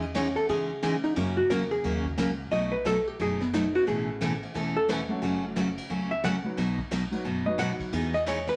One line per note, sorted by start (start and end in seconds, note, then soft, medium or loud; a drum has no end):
0.00 0.35 E2 medium
0.00 0.15 D#5 medium
0.15 0.26 E3 medium
0.15 0.26 G#3 medium
0.15 0.26 C#4 medium
0.15 0.26 D#4 medium
0.15 0.27 G#4 medium
0.15 0.36 C#5 medium
0.15 kick soft
0.15 snare medium
0.15 hi-hat pedal medium
0.15 ride medium
0.36 0.49 A4 medium
0.36 ride soft
0.49 1.03 C#3 medium
0.49 0.70 E3 medium
0.49 0.70 G#3 medium
0.49 0.70 C#4 medium
0.49 0.70 D#4 medium
0.49 0.70 G#4 medium
0.49 1.00 G#4 medium
0.49 kick soft
0.49 ride medium
0.82 0.94 E3 medium
0.82 0.94 G#3 medium
0.82 0.94 C#4 medium
0.82 0.94 D#4 medium
0.82 0.94 G#4 medium
0.82 kick soft
0.82 snare medium
0.82 hi-hat pedal medium
0.82 ride medium
1.04 1.16 D#4 medium
1.04 ride soft
1.16 1.43 F#2 medium
1.16 1.37 C#3 medium
1.16 2.10 F#3 medium
1.16 1.38 F#3 medium
1.16 1.38 A#3 medium
1.16 2.11 A#3 medium
1.16 1.38 C#4 medium
1.16 2.11 C#4 medium
1.16 1.37 C#4 medium
1.16 1.38 F#4 medium
1.16 2.11 F#4 medium
1.16 2.11 A#4 medium
1.16 kick soft
1.16 ride medium
1.37 1.50 F#4 medium
1.50 1.79 E2 medium
1.50 1.62 C#3 medium
1.50 1.62 F#3 medium
1.50 1.62 A#3 medium
1.50 1.62 C#4 medium
1.50 1.62 F#4 medium
1.50 1.71 A#4 loud
1.50 kick soft
1.50 snare medium
1.50 hi-hat pedal medium
1.50 ride medium
1.71 2.03 G#4 medium
1.71 ride soft
1.84 2.13 D#2 medium
1.84 2.05 C#3 medium
1.84 2.05 F#3 medium
1.84 2.05 A#3 medium
1.84 2.06 C#4 medium
1.84 2.06 F#4 medium
1.84 kick soft
1.84 ride medium
2.05 kick medium
2.17 2.47 C#2 loud
2.17 2.29 C#3 medium
2.17 2.29 F#3 medium
2.17 2.29 A#3 medium
2.17 2.29 C#4 medium
2.17 2.29 F#4 medium
2.17 kick soft
2.17 snare medium
2.17 hi-hat pedal medium
2.17 ride medium
2.51 3.06 B1 medium
2.51 2.73 B2 medium
2.51 2.73 F#3 medium
2.51 2.73 A3 medium
2.51 2.73 D#4 medium
2.51 2.73 F#4 medium
2.51 2.72 D#5 medium
2.51 kick soft
2.51 ride medium
2.72 2.85 B4 medium
2.85 2.96 B2 medium
2.85 2.97 F#3 medium
2.85 2.97 A3 medium
2.85 2.97 D#4 medium
2.85 2.97 F#4 medium
2.85 3.07 A4 medium
2.85 kick soft
2.85 snare medium
2.85 hi-hat pedal medium
2.85 ride medium
3.08 3.20 G4 loud
3.19 3.74 F#1 medium
3.19 3.41 B2 medium
3.19 3.41 F#3 medium
3.19 3.41 A3 medium
3.19 3.41 D#4 medium
3.19 3.41 F#4 medium
3.19 3.41 G#4 medium
3.19 kick soft
3.19 ride medium
3.41 3.54 B3 medium
3.41 snare soft
3.53 3.65 B2 medium
3.53 3.65 F#3 medium
3.53 3.65 A3 medium
3.53 3.65 D#4 medium
3.53 3.74 D#4 medium
3.53 3.65 F#4 medium
3.53 kick soft
3.53 snare medium
3.53 hi-hat pedal medium
3.53 ride medium
3.73 4.18 A3 medium
3.73 4.18 B3 medium
3.73 4.18 C#4 medium
3.73 4.18 E4 medium
3.73 3.87 F#4 medium
3.73 4.18 B4 medium
3.73 ride soft
3.87 4.41 A1 loud
3.87 4.08 B2 medium
3.87 4.08 E3 medium
3.87 4.08 A3 medium
3.87 4.08 C#4 medium
3.87 4.39 G#4 medium
3.87 4.08 A4 medium
3.87 kick soft
3.87 ride medium
4.21 4.32 B2 medium
4.21 4.32 E3 medium
4.21 4.32 A3 medium
4.21 4.32 C#4 medium
4.21 4.33 A4 medium
4.21 kick soft
4.21 snare medium
4.21 hi-hat pedal medium
4.21 ride medium
4.43 ride soft
4.54 5.09 E1 medium
4.54 4.76 B2 medium
4.54 4.76 E3 medium
4.54 4.76 A3 medium
4.54 4.76 C#4 medium
4.54 4.76 A4 medium
4.54 kick soft
4.54 ride medium
4.77 4.90 A4 medium
4.89 5.00 B2 medium
4.89 5.00 E3 medium
4.89 5.00 A3 medium
4.89 5.00 C#4 medium
4.89 5.00 A4 medium
4.89 5.10 B4 medium
4.89 kick soft
4.89 snare medium
4.89 hi-hat pedal medium
4.89 ride medium
5.09 5.53 F#3 medium
5.09 5.53 A3 medium
5.09 5.54 C#4 medium
5.09 5.54 F#4 medium
5.09 5.54 A4 loud
5.22 5.77 F#1 medium
5.22 5.43 C#3 medium
5.22 5.43 F#3 medium
5.22 5.43 A3 medium
5.22 5.44 C#4 medium
5.22 5.44 F#4 medium
5.22 kick soft
5.22 ride medium
5.56 5.67 C#3 medium
5.56 5.67 F#3 medium
5.56 5.67 A3 medium
5.56 5.67 C#4 medium
5.56 5.68 F#4 medium
5.56 kick soft
5.56 snare medium
5.56 hi-hat pedal medium
5.56 ride medium
5.78 ride medium
5.90 6.44 C#2 medium
5.90 6.11 C#3 medium
5.90 6.11 F#3 medium
5.90 6.11 A3 medium
5.90 6.11 C#4 medium
5.90 6.11 F#4 medium
5.90 kick soft
6.11 6.24 E5 medium
6.24 6.35 C#3 medium
6.24 6.35 F#3 medium
6.24 6.35 A3 medium
6.24 6.35 C#4 medium
6.24 6.35 F#4 medium
6.24 6.45 F#5 loud
6.24 kick soft
6.24 snare medium
6.24 hi-hat pedal medium
6.24 ride medium
6.44 6.56 F#3 medium
6.44 6.56 B3 medium
6.44 6.56 D#4 medium
6.44 6.56 F#4 medium
6.44 6.57 B4 medium
6.57 7.12 B1 loud
6.57 6.79 B2 medium
6.57 6.79 F#3 medium
6.57 6.79 B3 medium
6.57 6.79 D#4 medium
6.57 6.79 F#4 medium
6.57 kick soft
6.57 snare soft
6.57 ride medium
6.78 kick medium
6.91 7.02 B2 medium
6.91 7.03 F#3 medium
6.91 7.03 B3 medium
6.91 7.03 D#4 medium
6.91 7.03 F#4 medium
6.91 kick soft
6.91 snare medium
6.91 hi-hat pedal medium
6.91 ride medium
7.11 7.23 F#3 medium
7.11 7.24 B3 medium
7.11 7.24 D#4 medium
7.11 7.24 F#4 medium
7.11 7.24 B4 medium
7.11 ride medium
7.24 7.79 F#1 medium
7.24 7.46 B2 medium
7.24 7.46 F#3 medium
7.24 7.46 B3 medium
7.24 7.46 D#4 medium
7.24 7.46 F#4 medium
7.24 kick soft
7.46 7.90 F#3 medium
7.46 7.90 B3 medium
7.46 7.90 D#4 medium
7.46 7.91 F#4 medium
7.46 7.91 B4 medium
7.46 7.59 D#5 medium
7.58 7.70 B2 medium
7.58 7.70 F#3 medium
7.58 7.70 B3 medium
7.58 7.70 D#4 medium
7.58 7.70 F#4 medium
7.58 7.72 F#5 loud
7.58 kick soft
7.58 snare medium
7.58 hi-hat pedal medium
7.58 ride medium
7.80 kick medium
7.80 ride medium
7.92 8.47 E2 loud
7.92 8.14 E3 medium
7.92 8.14 B3 medium
7.92 8.14 D#4 medium
7.92 8.14 G#4 medium
7.92 kick soft
7.92 ride medium
8.14 8.27 D#5 loud
8.14 snare soft
8.26 8.38 E3 medium
8.26 8.38 B3 medium
8.26 8.38 D#4 medium
8.26 8.38 G#4 medium
8.26 8.48 C#5 loud
8.26 kick soft
8.26 snare medium
8.26 hi-hat pedal medium
8.26 ride medium
8.47 8.56 B4 medium
8.47 snare medium
8.47 ride soft